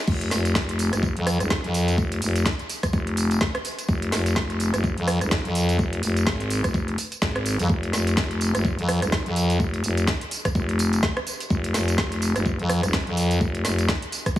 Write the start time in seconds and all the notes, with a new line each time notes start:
0.08 F1, kick, crash, tambourine
0.21 closed hi-hat
0.31 F1, snare, open hi-hat, tambourine
0.45 closed hi-hat, tambourine
0.55 F1, kick, snare
0.69 closed hi-hat
0.79 open hi-hat, tambourine
0.93 F1, cross-stick, closed hi-hat, tambourine
1.03 kick, tambourine
1.17 F2, closed hi-hat
1.27 cross-stick, open hi-hat, tambourine
1.40 D#1, cross-stick, closed hi-hat, tambourine
1.50 kick, snare
1.64 F2, closed hi-hat
1.74 open hi-hat, tambourine
1.88 closed hi-hat, tambourine
1.98 F1, kick, tambourine
2.12 closed hi-hat
2.22 F1, open hi-hat, tambourine
2.36 closed hi-hat, tambourine
2.46 kick, snare
2.59 closed hi-hat
2.69 open hi-hat, tambourine
2.83 kick, cross-stick, closed hi-hat, tambourine
2.93 F1, kick, tambourine
3.07 closed hi-hat
3.17 open hi-hat, tambourine
3.31 closed hi-hat, tambourine
3.41 kick, snare
3.55 cross-stick, closed hi-hat
3.65 open hi-hat, tambourine
3.79 closed hi-hat, tambourine
3.89 F1, kick, tambourine
4.02 closed hi-hat
4.12 F1, snare, open hi-hat, tambourine
4.26 closed hi-hat, tambourine
4.36 F1, kick, snare
4.50 closed hi-hat
4.60 open hi-hat, tambourine
4.74 F1, cross-stick, closed hi-hat, tambourine
4.84 kick, tambourine
4.98 F2, closed hi-hat
5.08 cross-stick, open hi-hat, tambourine
5.21 D#1, cross-stick, closed hi-hat, tambourine
5.31 kick, snare
5.45 F2, closed hi-hat
5.55 open hi-hat, tambourine
5.69 closed hi-hat, tambourine
5.79 F1, kick, tambourine
5.93 closed hi-hat
6.03 F1, open hi-hat, tambourine
6.17 closed hi-hat, tambourine
6.27 G#1, kick, snare, tambourine
6.40 closed hi-hat
6.50 open hi-hat, tambourine
6.64 F1, kick, cross-stick, closed hi-hat, tambourine
6.74 kick, tambourine
6.88 closed hi-hat
6.98 open hi-hat, tambourine
7.12 closed hi-hat, tambourine
7.22 G#1, kick, snare, tambourine
7.36 cross-stick, closed hi-hat
7.46 open hi-hat, tambourine
7.59 F2, closed hi-hat, tambourine
7.69 F1, kick, tambourine
7.83 closed hi-hat
7.93 F1, snare, open hi-hat, tambourine
8.07 closed hi-hat, tambourine
8.17 F1, kick, snare, tambourine
8.31 closed hi-hat
8.41 open hi-hat, tambourine
8.55 F1, cross-stick, closed hi-hat, tambourine
8.65 kick, tambourine
8.79 F2, closed hi-hat
8.89 cross-stick, open hi-hat, tambourine
9.02 D#1, cross-stick, closed hi-hat, tambourine
9.12 kick, snare, tambourine
9.26 F2, closed hi-hat
9.36 open hi-hat, tambourine
9.50 closed hi-hat, tambourine
9.60 F1, kick, tambourine
9.74 closed hi-hat
9.84 F1, open hi-hat, tambourine
9.97 closed hi-hat, tambourine
10.07 kick, snare, tambourine
10.21 closed hi-hat
10.31 open hi-hat, tambourine
10.45 kick, cross-stick, closed hi-hat, tambourine
10.55 F1, kick, tambourine
10.69 closed hi-hat
10.79 open hi-hat, tambourine
10.93 closed hi-hat, tambourine
11.03 kick, snare, tambourine
11.17 cross-stick, closed hi-hat
11.27 open hi-hat, tambourine
11.40 closed hi-hat, tambourine
11.50 F1, kick, tambourine
11.64 closed hi-hat
11.74 F1, snare, open hi-hat, tambourine
11.88 closed hi-hat, tambourine
11.98 F1, kick, snare, tambourine
12.12 closed hi-hat
12.22 open hi-hat, tambourine
12.36 F1, cross-stick, closed hi-hat, tambourine
12.46 kick, tambourine
12.59 F2, closed hi-hat
12.69 cross-stick, open hi-hat, tambourine
12.83 D#1, cross-stick, closed hi-hat, tambourine
12.93 kick, snare, tambourine
13.07 F2, closed hi-hat
13.17 open hi-hat, tambourine
13.31 closed hi-hat, tambourine
13.41 F1, kick, tambourine
13.55 closed hi-hat
13.65 F1, snare, open hi-hat, tambourine
13.79 closed hi-hat, tambourine
13.89 kick, snare, tambourine
14.02 closed hi-hat
14.12 open hi-hat, tambourine
14.26 kick, cross-stick, closed hi-hat, tambourine